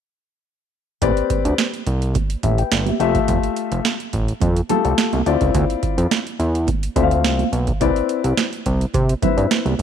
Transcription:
1.02 1.12 A1 loud
1.02 1.63 C4 medium
1.02 1.63 G4 medium
1.02 1.63 B4 medium
1.02 1.63 D5 loud
1.02 kick loud
1.02 closed hi-hat medium
1.02 muted conga soft
1.17 closed hi-hat soft
1.30 kick medium
1.30 closed hi-hat medium
1.30 muted conga soft
1.45 1.54 D2 medium
1.45 closed hi-hat medium
1.58 snare medium
1.58 closed hi-hat medium
1.58 high conga medium
1.74 closed hi-hat soft
1.87 2.17 C2 medium
1.87 closed hi-hat medium
2.02 closed hi-hat medium
2.14 kick loud
2.14 closed hi-hat medium
2.14 muted conga soft
2.30 closed hi-hat medium
2.43 2.63 A1 medium
2.43 2.58 G4 medium
2.43 2.58 E5 medium
2.43 kick medium
2.43 closed hi-hat medium
2.43 muted conga soft
2.58 2.86 B4 medium
2.58 2.85 G5 medium
2.58 closed hi-hat soft
2.72 2.91 G1 medium
2.72 snare loud
2.72 closed hi-hat medium
2.72 high conga medium
2.86 2.99 G4 soft
2.86 2.99 E5 medium
2.86 closed hi-hat soft
2.86 high conga medium
3.00 3.20 F1 loud
3.00 3.91 A3 medium
3.00 3.91 F4 medium
3.00 3.91 G4 medium
3.00 3.91 E5 loud
3.00 closed hi-hat medium
3.15 kick medium
3.15 closed hi-hat medium
3.28 3.39 F1 loud
3.28 kick medium
3.28 closed hi-hat medium
3.28 muted conga soft
3.43 closed hi-hat soft
3.56 closed hi-hat medium
3.72 3.81 F1 medium
3.72 closed hi-hat medium
3.85 snare medium
3.85 closed hi-hat medium
3.85 high conga medium
4.00 closed hi-hat medium
4.13 4.33 A1 medium
4.13 kick medium
4.13 closed hi-hat medium
4.28 closed hi-hat soft
4.40 4.61 F2 loud
4.40 kick loud
4.40 closed hi-hat medium
4.40 muted conga soft
4.57 closed hi-hat medium
4.69 5.16 A3 medium
4.69 5.16 F4 medium
4.69 5.16 G4 medium
4.69 5.16 A4 loud
4.69 closed hi-hat medium
4.69 muted conga medium
4.69 low conga medium
4.85 4.94 C2 medium
4.85 closed hi-hat soft
4.98 snare loud
4.98 closed hi-hat medium
4.98 high conga medium
5.13 5.22 C2 medium
5.13 closed hi-hat soft
5.13 high conga medium
5.26 5.37 D2 medium
5.26 6.17 C4 medium
5.26 6.17 E4 medium
5.26 6.17 F4 medium
5.26 6.17 D5 medium
5.26 closed hi-hat medium
5.41 5.51 C#2 medium
5.41 kick medium
5.41 closed hi-hat soft
5.55 5.65 D2 loud
5.55 kick medium
5.55 closed hi-hat medium
5.55 muted conga soft
5.70 closed hi-hat soft
5.83 kick medium
5.83 closed hi-hat medium
5.98 6.07 F2 medium
5.98 closed hi-hat medium
6.11 snare loud
6.11 closed hi-hat medium
6.11 high conga medium
6.27 closed hi-hat soft
6.39 6.70 E2 medium
6.39 closed hi-hat medium
6.55 closed hi-hat medium
6.67 kick loud
6.67 closed hi-hat medium
6.67 muted conga soft
6.83 closed hi-hat medium
6.96 7.26 D2 medium
6.96 7.42 C4 medium
6.96 7.42 F4 medium
6.96 7.03 E5 medium
6.96 kick loud
6.96 closed hi-hat medium
6.96 muted conga soft
7.03 7.46 F5 medium
7.11 closed hi-hat soft
7.24 7.44 C2 loud
7.24 snare loud
7.24 closed hi-hat loud
7.24 high conga medium
7.39 closed hi-hat soft
7.39 high conga medium
7.52 7.72 B1 medium
7.52 closed hi-hat medium
7.67 kick medium
7.67 closed hi-hat medium
7.80 7.92 C2 loud
7.80 8.42 C4 medium
7.80 8.42 E4 medium
7.80 8.42 B4 medium
7.80 8.42 D5 loud
7.80 kick loud
7.80 closed hi-hat medium
7.80 muted conga soft
7.96 closed hi-hat soft
8.09 closed hi-hat medium
8.24 8.34 C2 medium
8.24 closed hi-hat medium
8.37 snare loud
8.37 closed hi-hat medium
8.37 high conga medium
8.53 closed hi-hat soft
8.66 8.86 C2 medium
8.66 kick medium
8.66 closed hi-hat medium
8.81 closed hi-hat soft
8.94 9.14 C3 medium
8.94 kick loud
8.94 closed hi-hat medium
8.94 muted conga soft
9.09 closed hi-hat medium
9.22 9.69 C4 medium
9.22 9.69 E4 medium
9.22 9.69 B4 medium
9.22 9.69 E5 medium
9.22 kick loud
9.22 closed hi-hat medium
9.22 muted conga medium
9.22 low conga medium
9.37 9.47 G2 medium
9.37 closed hi-hat soft
9.51 snare loud
9.51 closed hi-hat loud
9.51 high conga medium
9.65 9.75 C2 medium
9.65 closed hi-hat soft
9.65 high conga medium
9.79 9.82 G1 medium

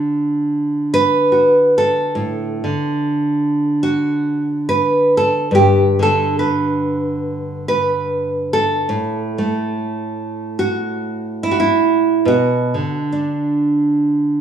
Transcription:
0.00 2.63 D3 medium
0.00 1.31 F#4 medium
0.94 1.77 B4 medium
1.32 2.11 F#4 soft
1.78 4.68 A4 medium
2.15 2.63 A2 medium
2.64 5.98 D3 medium
3.83 5.52 F#4 medium
4.69 5.16 B4 medium
5.17 5.53 A4 medium
5.51 8.84 G2 medium
5.51 6.01 G4 medium
5.99 8.89 D3 medium
5.99 6.38 A4 medium
6.39 7.67 B4 medium
7.68 8.53 B4 medium
8.53 11.42 A4 medium
8.89 12.26 A2 medium
9.38 12.22 A3 medium
10.59 11.50 F#4 medium
11.43 11.58 E4 medium
11.51 12.27 F#4 medium
11.60 12.27 E4 medium
12.25 12.73 B2 medium
12.25 14.41 F#4 medium
12.74 14.41 D3 medium
13.12 14.41 D4 soft

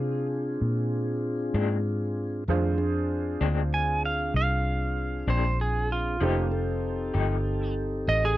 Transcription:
0.00 0.58 C3 medium
0.00 2.44 C4 medium
0.00 2.44 D4 soft
0.00 2.44 D4 medium
0.00 0.27 F4 medium
0.00 2.44 F4 soft
0.00 2.44 F4 medium
0.00 2.44 G#4 soft
0.00 2.44 G#4 medium
0.00 2.44 C5 soft
0.61 1.52 A#2 medium
1.54 2.45 G#2 medium
1.54 1.74 A#2 medium
1.54 1.74 G#3 medium
1.54 1.74 C4 medium
1.54 1.73 D4 medium
2.48 3.39 F2 medium
2.48 2.79 D#3 medium
2.48 2.79 A3 medium
2.48 2.77 C4 medium
2.48 6.17 D4 medium
2.48 2.77 F4 medium
2.48 6.18 F4 medium
2.48 6.18 G#4 medium
2.48 6.18 C5 medium
2.78 6.17 C4 medium
2.78 6.17 D4 medium
2.78 6.17 F4 medium
2.78 6.17 G#4 medium
3.41 4.32 D2 medium
3.41 3.61 A#2 medium
3.41 3.61 G#3 medium
3.41 3.60 C4 medium
3.41 3.60 D4 medium
3.74 4.03 G#5 medium
4.05 4.35 F5 medium
4.34 5.25 C2 medium
4.34 5.26 F5 loud
5.27 6.18 A#1 medium
5.27 5.48 A#2 medium
5.27 5.47 G#3 medium
5.27 5.47 C4 medium
5.27 5.47 D4 medium
5.27 5.59 C5 medium
5.61 5.90 G#4 medium
5.92 7.74 F4 medium
6.21 7.12 F1 medium
6.21 6.40 F3 medium
6.21 6.40 A3 medium
6.21 6.52 A#3 medium
6.21 6.52 C#4 medium
6.21 6.50 D#4 medium
6.21 8.37 D#4 soft
6.21 6.40 D#4 medium
6.21 6.51 G4 medium
6.21 8.37 G4 soft
6.21 6.41 G4 medium
6.21 8.37 A4 soft
6.21 8.37 C5 medium
6.51 8.37 C4 medium
6.51 8.37 D#4 medium
6.51 8.37 G4 medium
6.51 8.37 A4 medium
7.14 8.05 G1 medium
7.14 7.34 F3 medium
7.14 7.34 A3 medium
7.14 7.33 D#4 medium
7.14 7.33 G4 medium
8.08 8.37 A1 medium
8.08 8.23 D#5 loud
8.25 8.37 G#4 medium

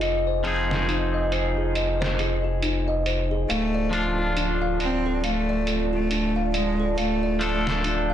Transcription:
0.00 3.46 F1 medium
0.00 0.40 F3 medium
0.00 0.40 C4 medium
0.00 0.41 D#4 medium
0.00 3.45 F4 medium
0.00 0.42 G#4 medium
0.00 3.45 D#5 medium
0.00 0.26 D#5 medium
0.00 3.46 G#5 medium
0.00 closed hi-hat medium
0.27 0.43 C5 medium
0.44 3.47 F3 medium
0.44 3.47 C4 medium
0.44 3.48 D#4 medium
0.44 0.68 G#4 medium
0.44 3.48 G#4 medium
0.44 closed hi-hat medium
0.70 0.86 F4 medium
0.70 snare soft
0.88 1.12 D#4 medium
0.88 closed hi-hat medium
1.14 1.31 D#5 medium
1.32 1.55 C5 medium
1.32 closed hi-hat medium
1.57 1.74 G#4 medium
1.75 2.00 D#5 medium
1.75 closed hi-hat medium
2.01 2.17 C5 medium
2.01 snare soft
2.19 2.42 G#4 medium
2.19 closed hi-hat medium
2.44 2.60 F4 medium
2.62 2.86 D#4 medium
2.62 closed hi-hat medium
2.88 3.05 D#5 medium
3.06 3.29 C5 medium
3.06 closed hi-hat medium
3.31 3.48 G#4 medium
3.49 8.14 D1 medium
3.49 4.10 A3 medium
3.49 8.14 F4 medium
3.49 8.14 D5 medium
3.49 3.74 F5 medium
3.49 8.14 A5 medium
3.49 closed hi-hat medium
3.74 3.91 D5 medium
3.91 7.35 F3 medium
3.91 7.36 D4 medium
3.91 7.37 F4 medium
3.91 4.16 A4 medium
3.91 closed hi-hat medium
4.18 4.35 F4 medium
4.36 4.60 D4 medium
4.36 closed hi-hat medium
4.62 4.79 F5 medium
4.80 5.20 C4 medium
4.80 5.03 D5 medium
4.80 closed hi-hat medium
5.06 5.22 A4 medium
5.24 5.85 A3 medium
5.24 5.48 F5 medium
5.24 closed hi-hat medium
5.49 5.65 D5 medium
5.67 5.90 A4 medium
5.67 closed hi-hat medium
5.93 6.49 A3 medium
5.93 6.09 F4 medium
6.11 6.35 D4 medium
6.11 closed hi-hat medium
6.36 6.53 F5 medium
6.54 6.94 G#3 medium
6.54 6.77 D5 medium
6.54 closed hi-hat medium
6.80 6.96 A4 medium
6.98 7.59 A3 medium
6.98 7.21 F5 medium
6.98 closed hi-hat medium
7.23 7.39 D5 medium
7.39 8.14 F3 medium
7.39 8.14 A3 medium
7.39 8.14 D4 medium
7.39 7.64 A4 medium
7.39 8.14 A4 medium
7.39 closed hi-hat medium
7.66 7.82 F4 medium
7.66 snare soft
7.84 8.08 D4 medium
7.84 closed hi-hat medium
8.10 8.14 F5 medium

